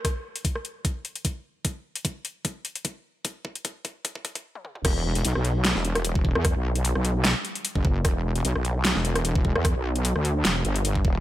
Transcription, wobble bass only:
X:1
M:4/4
L:1/16
Q:"Swing 16ths" 1/4=150
K:Em
V:1 name="Wobble bass" clef=bass
z16 | z16 | z16 | E,,,4 B,,, B,,,4 E,,,6 E,,- |
E,, B,,,4 B,,,4 z4 F,,,3 | E,,,4 B,,, B,,,4 E,,,6 E,,- | E,, B,,,4 D,,3 E,,,2 G,,,4 E,,,2 |]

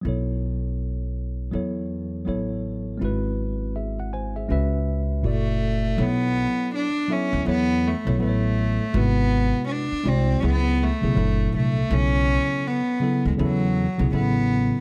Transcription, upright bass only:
X:1
M:4/4
L:1/16
Q:"Swing 16ths" 1/4=81
K:Bdor
V:1 name="Upright bass" clef=bass
B,,,8 E,,4 A,,,4 | G,,,8 C,,4 F,,,4 | B,,,3 z4 D,, E,,3 B,,, A,,,4 | G,,,4 z2 ^B,,,2 C,,3 =B,,, F,,,2 =C,,2 |
B,,,3 z4 D,, E,,3 B,,, A,,,4 |]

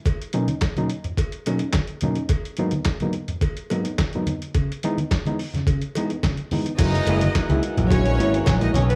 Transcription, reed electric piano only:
X:1
M:4/4
L:1/16
Q:1/4=107
K:F#mix
V:1 name="Reed electric piano"
z2 [B,,F,A,CD] [CD] z [B,,F,A,CD] z4 [B,,F,A,CD] [CD] z2 [B,,F,A,CD] [CD] | z2 [G,,F,A,B,D] [B,D] z [G,,F,A,B,D] z4 [G,,F,A,B,D] [B,D] z [G,,F,A,B,D] [B,D] z | C, z [E,G,B,D] [B,D] z [E,G,B,D] z C, C, z [E,G,B,D] [B,D] C, z [E,G,B,D] [B,D] | F, z [G,A,E] [A,E] z [G,A,E] z F, F, z [G,A,E] [A,E] F, [G,A,E] [CD] z |]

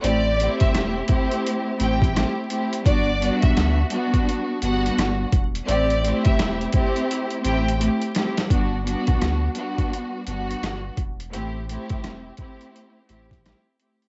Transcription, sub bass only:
X:1
M:4/4
L:1/16
Q:"Swing 16ths" 1/4=85
K:G
V:1 name="Sub bass" clef=bass
A,,,3 G,,, E,,,2 z4 A,,,3 z3 | G,,,3 B,,, D,,2 z4 G,,,2 G,,,2 E,,,2 | A,,,3 G,,, E,,,2 z4 A,,,3 z3 | G,,,3 B,,, D,,2 z4 G,,,2 G,,,2 E,,,2 |
A,,,3 G,,, E,,,2 z4 A,,,3 z3 |]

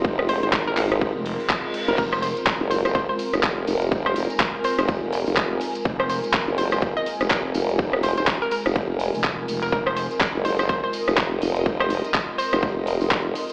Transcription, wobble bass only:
X:1
M:4/4
L:1/16
Q:"Swing 16ths" 1/4=124
K:Fm
V:1 name="Wobble bass" clef=bass
F,,,2 F,,, A,,,3 A,,,3 z6 F,,, | z4 z _G,,,4 z2 F,,,3 F,,,2- | F,,,2 F,,, z4 F,,,4 F,,,3 z2 | z4 z _G,,,4 z2 F,,,3 F,,,2- |
F,,,2 F,,, E,,,2 z2 F,,,4 z4 z | z4 z _G,,,4 z2 F,,,3 F,,,2- | F,,,2 F,,, z4 F,,,4 F,,,3 z2 |]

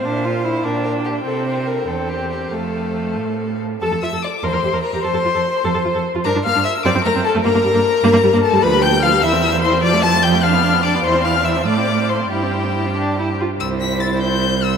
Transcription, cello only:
X:1
M:6/8
L:1/16
Q:3/8=99
K:F
V:1 name="Cello" clef=bass
B,,6 B,,6 | C,6 E,,6 | F,,6 A,,6 | F,, F,, F,, F,, z2 E,, E,, E,, E,, z E,, |
F,, F,, F,, F,, z2 F,, F,, F,, F,, z F,, | G,, G,, G,, G,, z2 ^F,, F,, F,, F,, z F,, | G,, G,, G,, G,, z2 G,, G,, G,, G,, z G,, | [K:C] D,,6 E,,6 |
F,,12 | E,,6 A,,6 | G,,8- G,,2 z2 | C,,12 |]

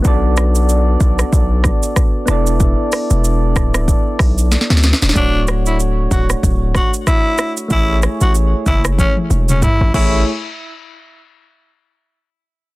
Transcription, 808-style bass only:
X:1
M:4/4
L:1/16
Q:"Swing 16ths" 1/4=94
K:A
V:1 name="808-style bass" clef=bass
B,,,6 B,,,2 B,,,3 z3 E,,,2- | E,,,2 z E,,,3 D,,,3 z B,,,3 D,,2 E,,, | D,,,6 D,,,2 D,,,3 z4 z | A,,,3 A,,,3 F,,,3 z E,,,3 A,,, A,,,2 |
z16 |]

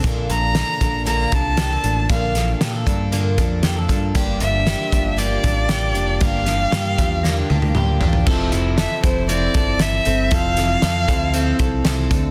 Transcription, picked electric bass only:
X:1
M:4/4
L:1/16
Q:1/4=117
K:F
V:1 name="Picked electric bass" clef=bass
B,,,2 B,,,3 z B,,,4 C,,4 A,,,2 | B,,,4 B,,2 G,,4 F,,2 F,,2 G,,2 | G,,,2 G,,,3 z G,,,4 A,,,4 F,,,2 | G,,,4 G,,2 E,,4 D,,2 D,,2 E,,2 |
F,,,2 F,,,3 z F,,,4 G,,,4 G,,,2 | F,,,4 F,,2 D,,4 C,,2 C,,2 D,,2 |]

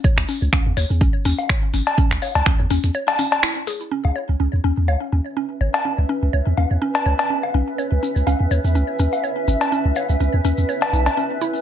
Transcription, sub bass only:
X:1
M:4/4
L:1/16
Q:"Swing 16ths" 1/4=124
K:C#m
V:1 name="Sub bass" clef=bass
z C,, z C,, C,, E,, D,, E,, C,, z D,, z3 G,,, z | z C,, z C,, C,, E,, D,, E,, z8 | z C,, z C,, C,, E,, D,, E,, C,, z D,, z3 G,,, z | z C,, z C,, C,, E,, D,, E,, z2 C,, z3 B,,, z |
z C,, z C,, C,, E,, D,, E,, C,, z D,, z3 G,,, z | z C,, z C,, C,, E,, D,, E,, z2 B,,, z4 z |]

